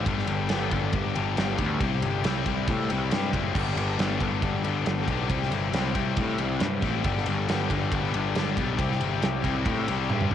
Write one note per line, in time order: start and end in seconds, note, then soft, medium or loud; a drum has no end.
0.05 0.27 G1 loud
0.05 0.49 G2 loud
0.05 0.50 D3 loud
0.05 0.30 G3 loud
0.05 0.28 B3 loud
0.05 0.27 D4 loud
0.05 0.27 G4 loud
0.05 kick loud
0.05 ride loud
0.18 snare soft
0.27 0.49 G1 medium
0.27 0.48 G3 medium
0.27 0.49 B3 medium
0.27 0.50 D4 medium
0.27 0.52 G4 medium
0.27 ride medium
0.49 0.71 G1 loud
0.49 0.72 G3 medium
0.49 0.71 B3 medium
0.49 0.70 D4 loud
0.49 0.71 G4 medium
0.49 snare loud
0.49 ride loud
0.71 0.93 G1 loud
0.71 1.16 G2 medium
0.71 1.17 D3 medium
0.71 0.92 G3 medium
0.71 0.93 B3 medium
0.71 0.93 D4 loud
0.71 0.95 G4 medium
0.71 kick medium
0.71 ride medium
0.92 1.15 G1 medium
0.92 1.16 G3 medium
0.92 1.15 B3 medium
0.92 1.15 D4 medium
0.92 1.14 G4 medium
0.92 kick loud
0.92 ride loud
1.15 1.37 G1 loud
1.15 1.60 G2 medium
1.15 1.60 D3 medium
1.15 1.36 G3 medium
1.15 1.36 B3 medium
1.15 1.37 D4 loud
1.15 1.39 G4 loud
1.15 ride medium
1.37 1.58 G1 medium
1.37 1.61 G3 medium
1.37 1.59 B3 medium
1.37 1.58 D4 medium
1.37 1.58 G4 medium
1.37 snare loud
1.37 ride loud
1.58 1.80 D2 medium
1.58 1.81 G3 medium
1.58 1.81 B3 medium
1.58 1.80 D4 medium
1.58 1.83 G4 medium
1.58 kick medium
1.58 ride medium
1.80 2.02 C2 medium
1.80 2.24 C3 loud
1.80 2.24 G3 loud
1.80 2.04 C4 loud
1.80 2.03 E4 loud
1.80 2.02 G4 loud
1.80 kick loud
1.80 ride loud
2.02 2.24 G1 medium
2.02 2.24 C4 medium
2.02 2.25 E4 medium
2.02 2.27 G4 medium
2.02 ride medium
2.24 2.46 C2 medium
2.24 2.48 G3 medium
2.24 2.47 C4 medium
2.24 2.46 E4 medium
2.24 2.46 G4 medium
2.24 snare loud
2.24 ride loud
2.46 2.68 C2 medium
2.46 2.92 C3 medium
2.46 2.67 G3 medium
2.46 2.67 C4 medium
2.46 2.69 E4 medium
2.46 2.70 G4 medium
2.46 kick medium
2.46 ride medium
2.68 2.89 A2 medium
2.68 2.91 G3 medium
2.68 2.90 C4 medium
2.68 2.89 E4 medium
2.68 2.89 G4 medium
2.68 kick loud
2.68 ride loud
2.89 3.11 C2 medium
2.89 3.35 C3 medium
2.89 3.11 G3 medium
2.89 3.11 C4 medium
2.89 3.12 E4 medium
2.89 3.14 G4 medium
2.89 ride medium
3.11 3.33 G2 medium
3.11 3.54 G3 medium
3.11 3.35 C4 medium
3.11 3.34 E4 medium
3.11 3.32 G4 medium
3.11 snare loud
3.11 ride loud
3.33 3.55 F#1 medium
3.33 3.55 C4 medium
3.33 3.55 E4 medium
3.33 3.57 G4 medium
3.33 kick medium
3.33 ride medium
3.54 3.76 G1 loud
3.54 3.98 G2 loud
3.54 3.99 D3 loud
3.54 3.79 G3 loud
3.54 3.77 B3 loud
3.54 3.76 D4 loud
3.54 3.76 G4 medium
3.54 kick loud
3.54 crash loud
3.76 3.98 G1 medium
3.76 3.97 G3 medium
3.76 3.98 B3 medium
3.76 3.99 D4 medium
3.76 4.00 G4 medium
3.76 ride medium
3.98 4.20 G1 medium
3.98 4.21 G3 medium
3.98 4.21 B3 medium
3.98 4.20 D4 medium
3.98 4.19 G4 medium
3.98 snare loud
3.98 ride loud
4.20 4.42 G1 medium
4.20 4.66 G2 medium
4.20 4.65 D3 medium
4.20 4.40 G3 medium
4.20 4.41 B3 medium
4.20 4.42 D4 medium
4.20 4.44 G4 medium
4.20 kick medium
4.20 ride medium
4.41 4.63 G1 loud
4.41 4.66 G3 medium
4.41 4.64 B3 medium
4.41 4.64 D4 medium
4.41 4.64 G4 medium
4.41 kick loud
4.41 ride loud
4.64 4.85 G1 medium
4.64 5.10 G2 medium
4.64 5.09 D3 medium
4.64 4.85 G3 medium
4.64 4.85 B3 loud
4.64 4.86 D4 medium
4.64 4.88 G4 loud
4.64 ride medium
4.86 5.07 G1 medium
4.86 5.09 G3 medium
4.86 5.08 B3 medium
4.86 5.07 D4 medium
4.86 5.06 G4 medium
4.86 snare loud
4.86 ride loud
5.07 5.30 B1 medium
5.07 5.29 G3 medium
5.07 5.29 B3 medium
5.07 5.29 D4 medium
5.07 5.31 G4 medium
5.07 kick medium
5.07 ride medium
5.29 5.51 C2 loud
5.29 5.73 C3 loud
5.29 5.72 G3 loud
5.29 5.53 C4 loud
5.29 5.51 E4 loud
5.29 5.51 G4 loud
5.29 kick loud
5.29 ride loud
5.42 snare soft
5.51 5.73 G1 medium
5.51 5.73 C4 medium
5.51 5.74 E4 medium
5.51 5.75 G4 medium
5.51 ride medium
5.73 5.95 C2 loud
5.73 5.97 G3 medium
5.73 5.95 C4 medium
5.73 5.94 E4 medium
5.73 5.94 G4 medium
5.73 snare loud
5.73 ride loud
5.95 6.17 C2 medium
5.95 6.40 C3 medium
5.95 6.17 G3 medium
5.95 6.17 C4 medium
5.95 6.18 E4 medium
5.95 6.20 G4 medium
5.95 kick medium
5.95 ride medium
6.17 6.38 A2 medium
6.17 6.41 G3 medium
6.17 6.39 C4 medium
6.17 6.39 E4 medium
6.17 6.39 G4 medium
6.17 kick loud
6.17 ride loud
6.38 6.60 C2 medium
6.38 6.84 C3 medium
6.38 6.60 G3 medium
6.38 6.60 C4 medium
6.38 6.61 E4 medium
6.38 6.63 G4 loud
6.38 ride medium
6.60 6.82 G2 medium
6.60 7.04 G3 medium
6.60 6.83 C4 medium
6.60 6.82 E4 medium
6.60 6.81 G4 medium
6.60 snare loud
6.60 ride loud
6.81 7.04 A1 medium
6.81 7.04 C4 medium
6.81 7.03 E4 medium
6.81 7.06 G4 medium
6.81 kick medium
6.81 ride medium
7.03 7.26 G1 loud
7.03 7.48 G2 loud
7.03 7.48 D3 medium
7.03 7.28 G3 loud
7.03 7.27 B3 loud
7.03 7.26 D4 loud
7.03 7.26 G4 loud
7.03 kick loud
7.03 ride loud
7.17 snare soft
7.26 7.48 G1 medium
7.26 7.47 G3 medium
7.26 7.48 B3 medium
7.26 7.49 D4 medium
7.26 7.50 G4 medium
7.26 ride medium
7.48 7.70 G1 medium
7.48 7.71 G3 medium
7.48 7.70 B3 medium
7.48 7.70 D4 medium
7.48 7.70 G4 medium
7.48 snare loud
7.48 ride loud
7.70 7.91 G1 medium
7.70 8.15 G2 medium
7.70 8.15 D3 medium
7.70 7.92 G3 medium
7.70 7.92 B3 medium
7.70 7.93 D4 medium
7.70 7.95 G4 loud
7.70 kick medium
7.70 ride medium
7.92 8.13 G1 loud
7.92 8.15 G3 medium
7.92 8.14 B3 medium
7.92 8.13 D4 medium
7.92 8.13 G4 medium
7.92 kick loud
7.92 ride loud
8.14 8.35 G1 medium
8.14 8.59 G2 medium
8.14 8.59 D3 medium
8.14 8.35 G3 medium
8.14 8.35 B3 medium
8.14 8.36 D4 medium
8.14 8.37 G4 medium
8.14 ride medium
8.35 8.57 G1 medium
8.35 8.59 G3 medium
8.35 8.57 B3 medium
8.35 8.56 D4 medium
8.35 8.56 G4 medium
8.35 snare loud
8.35 ride loud
8.56 8.79 B1 medium
8.56 8.79 G3 medium
8.56 8.78 B3 medium
8.56 8.78 D4 medium
8.56 8.81 G4 medium
8.56 kick medium
8.56 ride medium
8.78 8.99 C2 medium
8.78 9.22 C3 loud
8.78 9.21 G3 loud
8.78 9.03 C4 loud
8.78 9.01 E4 loud
8.78 9.00 G4 loud
8.78 kick loud
8.78 ride loud
8.92 snare soft
9.00 9.21 G1 loud
9.00 9.23 E4 medium
9.00 9.24 G4 medium
9.00 ride medium
9.04 9.22 C4 medium
9.22 9.44 C2 medium
9.22 9.45 G3 medium
9.22 9.44 C4 medium
9.22 9.43 E4 medium
9.22 9.42 G4 medium
9.22 snare loud
9.22 ride loud
9.43 9.65 C2 medium
9.43 9.89 C3 medium
9.43 9.65 G3 medium
9.43 9.66 C4 medium
9.43 9.67 E4 medium
9.43 9.68 G4 medium
9.43 kick medium
9.43 ride medium
9.66 9.87 A2 medium
9.66 9.88 G3 medium
9.66 9.88 C4 medium
9.66 9.87 E4 medium
9.66 9.86 G4 medium
9.66 kick loud
9.66 ride loud
9.88 10.09 C2 medium
9.88 10.33 C3 medium
9.88 10.09 G3 medium
9.88 10.10 C4 medium
9.88 10.11 E4 medium
9.88 10.12 G4 loud
9.88 ride medium
10.10 10.31 G2 medium
10.10 10.35 G3 medium
10.10 10.33 C4 medium
10.10 10.32 E4 medium
10.10 10.30 G4 medium
10.10 high tom medium
10.21 mid tom medium
10.31 10.35 G4 medium
10.31 mid tom loud